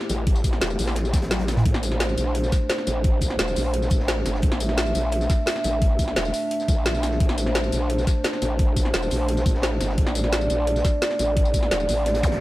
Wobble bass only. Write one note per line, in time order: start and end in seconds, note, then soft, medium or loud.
0.09 0.60 A1 loud
0.61 0.77 E1 loud
0.79 1.64 A1 loud
1.66 2.16 A1 loud
2.18 2.51 A#1 loud
2.87 3.38 A1 loud
3.39 3.55 E1 loud
3.56 3.90 A#1 loud
3.91 4.24 A1 loud
4.26 4.42 G1 loud
4.43 4.94 A1 loud
4.95 5.28 A#1 loud
5.64 6.15 A1 loud
6.16 6.32 E1 loud
6.68 7.19 A#1 loud
7.20 7.71 A1 loud
7.72 8.06 A#1 loud
8.42 8.92 A1 loud
8.94 9.10 E1 loud
9.11 9.44 A#1 loud
9.46 9.79 A1 loud
9.81 9.97 G1 loud
9.98 10.49 A1 loud
10.50 10.83 A#1 loud
11.19 11.70 A1 loud
11.71 11.87 E1 loud
11.89 12.40 A1 loud